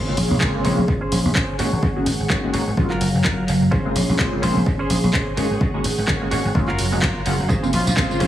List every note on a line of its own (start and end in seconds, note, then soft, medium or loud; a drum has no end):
0.00 1.57 C#4 medium
0.00 2.74 G#4 medium
0.00 1.57 C6 medium
0.07 0.14 C#3 medium
0.07 0.15 G#3 medium
0.07 0.15 A#3 medium
0.07 0.15 C4 medium
0.07 0.15 F4 loud
0.17 0.25 A#1 medium
0.17 muted clean electric guitar stroke soft
0.17 open hi-hat loud
0.30 0.37 A#1 medium
0.40 0.49 A#2 medium
0.40 0.52 C#3 medium
0.40 0.52 G#3 medium
0.40 0.52 A#3 medium
0.40 0.52 C4 medium
0.40 0.54 C#4 medium
0.40 0.53 F4 medium
0.40 0.54 G#4 medium
0.40 0.55 A#4 medium
0.40 kick loud
0.40 clap loud
0.54 0.63 C#3 medium
0.54 0.63 G#3 medium
0.54 0.63 A#3 medium
0.54 0.63 C4 medium
0.54 0.63 F4 medium
0.64 0.73 A#1 medium
0.64 0.79 C#3 medium
0.64 0.79 G#3 medium
0.64 0.80 A#3 medium
0.64 0.80 C4 medium
0.64 0.83 C#4 medium
0.64 0.80 F4 loud
0.64 0.83 G#4 medium
0.64 0.83 C5 medium
0.64 open hi-hat medium
0.78 0.84 A#1 medium
0.88 0.96 A#2 medium
0.88 kick loud
1.01 1.18 C#4 loud
1.01 1.19 G#4 loud
1.01 1.19 C5 loud
1.12 1.20 A#1 medium
1.12 open hi-hat loud
1.25 1.31 A#1 medium
1.35 1.43 A#2 medium
1.35 1.54 C#4 medium
1.35 1.54 G#4 medium
1.35 1.54 C5 medium
1.35 kick loud
1.35 clap loud
1.59 1.67 G#1 medium
1.59 1.68 D#3 medium
1.59 1.68 G#3 medium
1.59 1.68 A#3 medium
1.59 1.69 C#4 medium
1.59 1.69 F4 medium
1.59 1.98 F#4 medium
1.59 1.98 G#4 medium
1.59 1.99 C#5 loud
1.59 2.76 F#5 medium
1.59 2.76 C#6 medium
1.59 open hi-hat loud
1.72 1.79 G#1 medium
1.83 1.91 G#2 loud
1.83 kick loud
1.96 2.08 D#3 medium
1.96 2.08 G#3 medium
1.96 2.08 A#3 medium
1.96 2.08 C#4 medium
1.96 2.08 F#4 medium
2.06 2.14 G#1 medium
2.06 muted clean electric guitar stroke soft
2.06 open hi-hat loud
2.20 2.26 G#1 medium
2.30 2.38 G#2 medium
2.30 2.39 D#3 medium
2.30 2.39 G#3 medium
2.30 2.39 A#3 medium
2.30 2.40 C#4 medium
2.30 2.43 F#4 medium
2.30 2.40 F#4 medium
2.30 2.43 G#4 medium
2.30 2.44 C#5 loud
2.30 kick loud
2.30 clap loud
2.43 2.50 D#3 medium
2.43 2.50 G#3 medium
2.43 2.51 A#3 medium
2.43 2.51 C#4 medium
2.43 2.51 F#4 loud
2.53 2.62 G#1 medium
2.53 2.63 D#3 medium
2.53 2.63 G#3 medium
2.53 2.63 A#3 medium
2.53 2.63 C#4 medium
2.53 2.72 F#4 medium
2.53 2.63 F#4 medium
2.53 2.72 G#4 medium
2.53 2.72 C#5 medium
2.53 open hi-hat medium
2.67 2.73 G#1 medium
2.77 2.85 F#2 medium
2.77 3.71 F#3 medium
2.77 2.92 F#3 loud
2.77 2.92 G#3 medium
2.77 2.92 A#3 medium
2.77 2.92 C#4 medium
2.77 2.92 F4 loud
2.77 3.71 F5 medium
2.77 3.71 A#5 medium
2.77 kick loud
2.90 3.07 F4 loud
2.90 3.08 F#4 loud
2.90 3.08 A#4 loud
2.90 clap soft
3.01 3.09 F#1 medium
3.01 open hi-hat loud
3.14 3.21 F#1 medium
3.24 3.33 F#2 medium
3.24 3.43 F4 medium
3.24 3.43 F#4 medium
3.24 3.43 A#4 loud
3.24 kick loud
3.24 clap loud
3.48 3.56 F#1 medium
3.48 open hi-hat loud
3.61 3.68 F#1 medium
3.61 muted clean electric guitar stroke soft
3.71 3.80 A#2 loud
3.71 3.85 C#4 loud
3.71 5.35 C#4 medium
3.71 6.52 G#4 medium
3.71 3.85 G#4 loud
3.71 3.86 C5 loud
3.71 5.35 C6 loud
3.71 kick loud
3.85 3.92 C#3 medium
3.85 3.92 G#3 medium
3.85 3.92 A#3 medium
3.85 3.92 C4 medium
3.85 3.93 F4 loud
3.95 4.03 A#1 medium
3.95 muted clean electric guitar stroke soft
3.95 open hi-hat loud
4.09 4.15 A#1 loud
4.19 4.27 A#2 medium
4.19 4.30 C#3 medium
4.19 4.30 G#3 medium
4.19 4.30 A#3 medium
4.19 4.30 C4 medium
4.19 4.32 C#4 medium
4.19 4.31 F4 medium
4.19 4.32 G#4 medium
4.19 4.33 C5 loud
4.19 kick loud
4.19 clap loud
4.32 4.41 C#3 medium
4.32 4.41 G#3 medium
4.32 4.41 A#3 medium
4.32 4.41 C4 medium
4.32 4.41 F4 medium
4.42 4.51 A#1 medium
4.42 4.57 C#3 medium
4.42 4.57 G#3 medium
4.42 4.57 A#3 medium
4.42 4.57 C4 medium
4.42 4.61 C#4 medium
4.42 4.57 F4 loud
4.42 4.61 G#4 medium
4.42 4.61 C5 loud
4.42 open hi-hat medium
4.56 4.62 A#1 medium
4.66 4.74 A#2 medium
4.66 kick loud
4.79 4.96 C#4 loud
4.79 4.97 G#4 loud
4.79 4.97 C5 loud
4.90 4.98 A#1 medium
4.90 open hi-hat loud
5.03 5.10 A#1 medium
5.13 5.22 A#2 medium
5.13 5.32 C#4 medium
5.13 5.32 G#4 medium
5.13 5.32 C5 medium
5.13 kick loud
5.13 clap loud
5.37 5.45 G#1 medium
5.37 5.46 D#3 medium
5.37 5.46 G#3 medium
5.37 5.47 A#3 medium
5.37 5.47 C#4 medium
5.37 5.47 F4 medium
5.37 5.76 F#4 medium
5.37 5.76 G#4 medium
5.37 5.77 C#5 loud
5.37 6.54 F#5 medium
5.37 6.54 C#6 medium
5.37 open hi-hat loud
5.51 5.57 G#1 medium
5.61 5.69 G#2 medium
5.61 kick loud
5.74 5.86 D#3 medium
5.74 5.86 G#3 medium
5.74 5.86 A#3 medium
5.74 5.86 C#4 medium
5.74 5.86 F#4 loud
5.84 5.93 G#1 medium
5.84 muted clean electric guitar stroke soft
5.84 open hi-hat loud
5.98 6.04 G#1 medium
6.07 6.16 G#2 medium
6.07 6.17 D#3 medium
6.07 6.17 G#3 medium
6.07 6.17 A#3 medium
6.07 6.17 C#4 medium
6.07 6.21 F#4 medium
6.07 6.18 F#4 medium
6.07 6.21 G#4 medium
6.07 6.22 C#5 loud
6.07 kick loud
6.07 clap loud
6.21 6.28 D#3 medium
6.21 6.28 G#3 medium
6.21 6.29 A#3 medium
6.21 6.29 C#4 medium
6.21 6.29 F#4 loud
6.31 6.40 G#1 medium
6.31 6.41 D#3 medium
6.31 6.41 G#3 medium
6.31 6.41 A#3 medium
6.31 6.41 C#4 medium
6.31 6.50 F#4 medium
6.31 6.41 F#4 medium
6.31 6.50 G#4 medium
6.31 6.50 C#5 loud
6.31 open hi-hat medium
6.45 6.51 G#1 medium
6.55 6.80 F#2 medium
6.55 6.69 F#3 loud
6.55 7.49 F#3 medium
6.55 6.69 G#3 medium
6.55 6.70 A#3 medium
6.55 6.70 C#4 medium
6.55 6.70 F4 loud
6.55 7.49 F5 medium
6.55 7.49 A#5 medium
6.55 kick loud
6.68 6.85 F4 loud
6.68 6.85 F#4 loud
6.68 6.86 A#4 loud
6.68 clap soft
6.79 6.87 F#1 medium
6.79 open hi-hat loud
6.92 6.98 F#1 medium
6.92 6.99 F#3 medium
6.92 6.99 G#3 medium
6.92 6.99 A#3 medium
6.92 6.99 C#4 medium
6.92 6.99 F#4 medium
7.02 7.10 F#2 medium
7.02 7.21 F4 medium
7.02 7.21 F#4 medium
7.02 7.21 A#4 medium
7.02 7.24 A#5 medium
7.02 kick loud
7.02 clap loud
7.26 7.34 F#1 medium
7.26 7.35 F#3 medium
7.26 7.35 G#3 medium
7.26 7.35 A#3 medium
7.26 7.36 C#4 medium
7.26 7.36 F4 medium
7.26 7.48 F#5 medium
7.26 open hi-hat loud
7.39 7.46 F#1 medium
7.39 muted clean electric guitar stroke soft
7.49 7.58 A#2 loud
7.49 7.62 C#4 loud
7.49 8.27 C#4 medium
7.49 7.63 G#4 loud
7.49 8.27 C5 medium
7.49 7.63 C5 loud
7.49 8.27 G#5 loud
7.49 kick loud
7.49 tambourine medium
7.62 7.70 C#3 medium
7.62 7.70 G#3 medium
7.62 7.70 A#3 medium
7.62 7.70 C4 medium
7.62 7.70 F4 loud
7.62 tambourine soft
7.72 7.81 A#1 medium
7.72 7.84 F4 medium
7.72 muted clean electric guitar stroke soft
7.72 open hi-hat loud
7.87 7.93 A#1 medium
7.87 8.27 F4 loud
7.87 tambourine medium
7.96 8.05 A#2 medium
7.96 8.08 C#3 medium
7.96 8.08 G#3 medium
7.96 8.08 A#3 medium
7.96 8.08 C4 medium
7.96 8.10 C#4 medium
7.96 8.08 F4 medium
7.96 8.10 G#4 medium
7.96 8.11 C5 loud
7.96 kick loud
7.96 clap loud
7.96 tambourine medium
8.10 8.19 C#3 medium
8.10 8.19 G#3 medium
8.10 8.19 A#3 medium
8.10 8.19 C4 medium
8.10 8.19 F4 medium
8.10 tambourine soft
8.20 8.27 A#1 medium
8.20 8.27 C#3 loud
8.20 8.27 G#3 medium
8.20 8.27 A#3 medium
8.20 8.27 C4 medium
8.20 8.27 C#4 medium
8.20 8.27 F4 loud
8.20 8.27 G#4 medium
8.20 8.27 C5 loud
8.20 open hi-hat medium